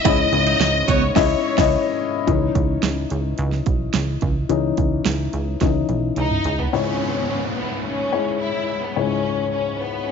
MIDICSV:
0, 0, Header, 1, 7, 480
1, 0, Start_track
1, 0, Key_signature, 4, "minor"
1, 0, Tempo, 556586
1, 43, Time_signature, 4, 2, 24, 8
1, 8725, End_track
2, 0, Start_track
2, 0, Title_t, "Steel-string acoustic guitar"
2, 0, Program_c, 0, 25
2, 44, Note_on_c, 0, 64, 109
2, 157, Note_off_c, 0, 64, 0
2, 401, Note_on_c, 0, 63, 79
2, 630, Note_off_c, 0, 63, 0
2, 762, Note_on_c, 0, 59, 81
2, 876, Note_off_c, 0, 59, 0
2, 8725, End_track
3, 0, Start_track
3, 0, Title_t, "Upright piano"
3, 0, Program_c, 1, 0
3, 0, Control_c, 1, 64, 127
3, 0, Note_on_c, 1, 61, 69
3, 0, Note_on_c, 1, 64, 59
3, 0, Note_on_c, 1, 75, 74
3, 43, Note_off_c, 1, 64, 0
3, 43, Note_on_c, 1, 64, 74
3, 44, Note_off_c, 1, 61, 0
3, 44, Note_on_c, 1, 44, 70
3, 44, Note_on_c, 1, 61, 74
3, 45, Note_off_c, 1, 75, 0
3, 45, Note_on_c, 1, 75, 96
3, 232, Note_off_c, 1, 64, 0
3, 233, Note_off_c, 1, 61, 0
3, 234, Note_off_c, 1, 75, 0
3, 281, Note_on_c, 1, 75, 76
3, 283, Note_on_c, 1, 61, 75
3, 284, Note_on_c, 1, 64, 57
3, 728, Note_off_c, 1, 44, 0
3, 985, Note_off_c, 1, 75, 0
3, 986, Note_off_c, 1, 61, 0
3, 987, Note_off_c, 1, 64, 0
3, 998, Note_on_c, 1, 75, 104
3, 999, Note_on_c, 1, 61, 95
3, 1000, Note_on_c, 1, 64, 105
3, 1163, Note_off_c, 1, 75, 0
3, 1164, Note_off_c, 1, 61, 0
3, 1164, Note_off_c, 1, 64, 0
3, 1359, Note_on_c, 1, 61, 98
3, 1360, Note_on_c, 1, 64, 94
3, 1360, Note_on_c, 1, 75, 109
3, 1523, Note_off_c, 1, 61, 0
3, 1524, Note_off_c, 1, 64, 0
3, 1524, Note_off_c, 1, 75, 0
3, 1956, Note_on_c, 1, 52, 51
3, 1960, Note_on_c, 1, 61, 49
3, 1965, Note_on_c, 1, 63, 59
3, 1971, Control_c, 1, 64, 0
3, 2103, Control_c, 1, 64, 127
3, 3844, Note_off_c, 1, 52, 0
3, 3847, Note_off_c, 1, 61, 0
3, 3849, Note_off_c, 1, 63, 0
3, 3874, Note_on_c, 1, 52, 55
3, 3878, Note_on_c, 1, 61, 47
3, 3884, Note_on_c, 1, 63, 54
3, 4827, Note_off_c, 1, 52, 0
3, 4833, Note_off_c, 1, 61, 0
3, 4837, Note_off_c, 1, 63, 0
3, 4840, Note_on_c, 1, 52, 44
3, 4846, Note_on_c, 1, 61, 40
3, 4850, Note_on_c, 1, 63, 49
3, 5057, Note_off_c, 1, 52, 0
3, 5060, Note_off_c, 1, 61, 0
3, 5063, Note_off_c, 1, 63, 0
3, 5803, Note_on_c, 1, 56, 50
3, 5804, Note_on_c, 1, 44, 48
3, 5804, Note_on_c, 1, 64, 53
3, 5805, Note_on_c, 1, 37, 47
3, 5806, Note_on_c, 1, 73, 59
3, 5813, Control_c, 1, 64, 0
3, 5970, Control_c, 1, 64, 127
3, 6562, Note_off_c, 1, 56, 0
3, 6563, Note_off_c, 1, 64, 0
3, 6564, Note_off_c, 1, 73, 0
3, 7007, Note_on_c, 1, 64, 50
3, 7007, Note_on_c, 1, 73, 59
3, 7009, Note_on_c, 1, 56, 51
3, 7575, Note_off_c, 1, 64, 0
3, 7575, Note_off_c, 1, 73, 0
3, 7576, Note_off_c, 1, 56, 0
3, 7691, Note_off_c, 1, 37, 0
3, 7691, Note_off_c, 1, 44, 0
3, 7729, Note_on_c, 1, 37, 51
3, 7730, Note_on_c, 1, 44, 49
3, 7730, Note_on_c, 1, 56, 51
3, 7730, Note_on_c, 1, 73, 63
3, 7732, Note_on_c, 1, 64, 50
3, 8486, Note_off_c, 1, 56, 0
3, 8487, Note_off_c, 1, 64, 0
3, 8487, Note_off_c, 1, 73, 0
3, 8725, Note_off_c, 1, 37, 0
3, 8725, Note_off_c, 1, 44, 0
3, 8725, End_track
4, 0, Start_track
4, 0, Title_t, "Violin section"
4, 0, Program_c, 2, 48
4, 48, Note_on_c, 2, 75, 127
4, 765, Note_off_c, 2, 75, 0
4, 773, Note_on_c, 2, 73, 105
4, 998, Note_off_c, 2, 73, 0
4, 1008, Note_on_c, 2, 73, 91
4, 1690, Note_off_c, 2, 73, 0
4, 5332, Note_on_c, 2, 63, 88
4, 5663, Note_off_c, 2, 63, 0
4, 5691, Note_on_c, 2, 59, 76
4, 5807, Note_off_c, 2, 59, 0
4, 5810, Note_on_c, 2, 61, 79
4, 6277, Note_off_c, 2, 61, 0
4, 6287, Note_on_c, 2, 61, 64
4, 6395, Note_off_c, 2, 61, 0
4, 6526, Note_on_c, 2, 59, 75
4, 6749, Note_off_c, 2, 59, 0
4, 6768, Note_on_c, 2, 61, 77
4, 7213, Note_off_c, 2, 61, 0
4, 7250, Note_on_c, 2, 64, 72
4, 7608, Note_off_c, 2, 64, 0
4, 7617, Note_on_c, 2, 59, 71
4, 7731, Note_off_c, 2, 59, 0
4, 7736, Note_on_c, 2, 61, 87
4, 8205, Note_off_c, 2, 61, 0
4, 8216, Note_on_c, 2, 61, 74
4, 8434, Note_off_c, 2, 61, 0
4, 8455, Note_on_c, 2, 59, 78
4, 8686, Note_on_c, 2, 61, 72
4, 8690, Note_off_c, 2, 59, 0
4, 8725, Note_off_c, 2, 61, 0
4, 8725, End_track
5, 0, Start_track
5, 0, Title_t, "Analog synth bass"
5, 0, Program_c, 3, 38
5, 42, Note_on_c, 3, 37, 113
5, 239, Note_off_c, 3, 37, 0
5, 278, Note_on_c, 3, 37, 101
5, 477, Note_off_c, 3, 37, 0
5, 516, Note_on_c, 3, 37, 106
5, 715, Note_off_c, 3, 37, 0
5, 758, Note_on_c, 3, 37, 93
5, 957, Note_off_c, 3, 37, 0
5, 1001, Note_on_c, 3, 37, 109
5, 1165, Note_off_c, 3, 37, 0
5, 1361, Note_on_c, 3, 37, 110
5, 1525, Note_off_c, 3, 37, 0
5, 1961, Note_on_c, 3, 37, 112
5, 2158, Note_off_c, 3, 37, 0
5, 2200, Note_on_c, 3, 37, 101
5, 2398, Note_off_c, 3, 37, 0
5, 2443, Note_on_c, 3, 37, 84
5, 2639, Note_off_c, 3, 37, 0
5, 2684, Note_on_c, 3, 37, 94
5, 2880, Note_off_c, 3, 37, 0
5, 2920, Note_on_c, 3, 37, 119
5, 3118, Note_off_c, 3, 37, 0
5, 3161, Note_on_c, 3, 35, 77
5, 3358, Note_off_c, 3, 35, 0
5, 3403, Note_on_c, 3, 37, 91
5, 3600, Note_off_c, 3, 37, 0
5, 3642, Note_on_c, 3, 37, 91
5, 3839, Note_off_c, 3, 37, 0
5, 3876, Note_on_c, 3, 37, 94
5, 4075, Note_off_c, 3, 37, 0
5, 4119, Note_on_c, 3, 37, 83
5, 4317, Note_off_c, 3, 37, 0
5, 4359, Note_on_c, 3, 37, 92
5, 4557, Note_off_c, 3, 37, 0
5, 4600, Note_on_c, 3, 37, 90
5, 4798, Note_off_c, 3, 37, 0
5, 4838, Note_on_c, 3, 37, 106
5, 5037, Note_off_c, 3, 37, 0
5, 5078, Note_on_c, 3, 35, 84
5, 5277, Note_off_c, 3, 35, 0
5, 5325, Note_on_c, 3, 37, 94
5, 5521, Note_off_c, 3, 37, 0
5, 5563, Note_on_c, 3, 37, 96
5, 5760, Note_off_c, 3, 37, 0
5, 8725, End_track
6, 0, Start_track
6, 0, Title_t, "Downlifter"
6, 0, Program_c, 4, 103
6, 5802, Note_on_c, 4, 60, 67
6, 8725, Note_off_c, 4, 60, 0
6, 8725, End_track
7, 0, Start_track
7, 0, Title_t, "Drums"
7, 42, Note_on_c, 9, 36, 105
7, 45, Note_on_c, 9, 42, 95
7, 128, Note_off_c, 9, 36, 0
7, 131, Note_off_c, 9, 42, 0
7, 283, Note_on_c, 9, 42, 66
7, 369, Note_off_c, 9, 42, 0
7, 523, Note_on_c, 9, 38, 109
7, 524, Note_on_c, 9, 42, 98
7, 609, Note_off_c, 9, 38, 0
7, 610, Note_off_c, 9, 42, 0
7, 759, Note_on_c, 9, 36, 83
7, 760, Note_on_c, 9, 42, 67
7, 845, Note_off_c, 9, 36, 0
7, 846, Note_off_c, 9, 42, 0
7, 1001, Note_on_c, 9, 36, 95
7, 1001, Note_on_c, 9, 38, 95
7, 1001, Note_on_c, 9, 49, 84
7, 1087, Note_off_c, 9, 36, 0
7, 1087, Note_off_c, 9, 38, 0
7, 1087, Note_off_c, 9, 49, 0
7, 1361, Note_on_c, 9, 36, 109
7, 1362, Note_on_c, 9, 38, 104
7, 1362, Note_on_c, 9, 49, 76
7, 1447, Note_off_c, 9, 36, 0
7, 1448, Note_off_c, 9, 38, 0
7, 1448, Note_off_c, 9, 49, 0
7, 1961, Note_on_c, 9, 36, 84
7, 1963, Note_on_c, 9, 42, 77
7, 2048, Note_off_c, 9, 36, 0
7, 2049, Note_off_c, 9, 42, 0
7, 2201, Note_on_c, 9, 36, 80
7, 2202, Note_on_c, 9, 42, 70
7, 2288, Note_off_c, 9, 36, 0
7, 2289, Note_off_c, 9, 42, 0
7, 2440, Note_on_c, 9, 38, 97
7, 2441, Note_on_c, 9, 42, 78
7, 2526, Note_off_c, 9, 38, 0
7, 2527, Note_off_c, 9, 42, 0
7, 2676, Note_on_c, 9, 42, 66
7, 2762, Note_off_c, 9, 42, 0
7, 2912, Note_on_c, 9, 42, 80
7, 2998, Note_off_c, 9, 42, 0
7, 3038, Note_on_c, 9, 38, 30
7, 3124, Note_off_c, 9, 38, 0
7, 3156, Note_on_c, 9, 42, 59
7, 3160, Note_on_c, 9, 36, 82
7, 3242, Note_off_c, 9, 42, 0
7, 3246, Note_off_c, 9, 36, 0
7, 3394, Note_on_c, 9, 42, 80
7, 3395, Note_on_c, 9, 38, 96
7, 3480, Note_off_c, 9, 42, 0
7, 3482, Note_off_c, 9, 38, 0
7, 3631, Note_on_c, 9, 42, 60
7, 3641, Note_on_c, 9, 36, 78
7, 3717, Note_off_c, 9, 42, 0
7, 3727, Note_off_c, 9, 36, 0
7, 3876, Note_on_c, 9, 42, 74
7, 3963, Note_off_c, 9, 42, 0
7, 4116, Note_on_c, 9, 42, 65
7, 4121, Note_on_c, 9, 36, 78
7, 4203, Note_off_c, 9, 42, 0
7, 4207, Note_off_c, 9, 36, 0
7, 4360, Note_on_c, 9, 38, 104
7, 4361, Note_on_c, 9, 42, 83
7, 4446, Note_off_c, 9, 38, 0
7, 4447, Note_off_c, 9, 42, 0
7, 4597, Note_on_c, 9, 42, 68
7, 4684, Note_off_c, 9, 42, 0
7, 4834, Note_on_c, 9, 42, 73
7, 4839, Note_on_c, 9, 38, 47
7, 4841, Note_on_c, 9, 36, 80
7, 4920, Note_off_c, 9, 42, 0
7, 4925, Note_off_c, 9, 38, 0
7, 4927, Note_off_c, 9, 36, 0
7, 5077, Note_on_c, 9, 42, 50
7, 5080, Note_on_c, 9, 48, 59
7, 5163, Note_off_c, 9, 42, 0
7, 5166, Note_off_c, 9, 48, 0
7, 5315, Note_on_c, 9, 42, 65
7, 5317, Note_on_c, 9, 47, 72
7, 5401, Note_off_c, 9, 42, 0
7, 5404, Note_off_c, 9, 47, 0
7, 5440, Note_on_c, 9, 45, 66
7, 5526, Note_off_c, 9, 45, 0
7, 5557, Note_on_c, 9, 42, 63
7, 5562, Note_on_c, 9, 43, 72
7, 5643, Note_off_c, 9, 42, 0
7, 5648, Note_off_c, 9, 43, 0
7, 5684, Note_on_c, 9, 43, 75
7, 5770, Note_off_c, 9, 43, 0
7, 8725, End_track
0, 0, End_of_file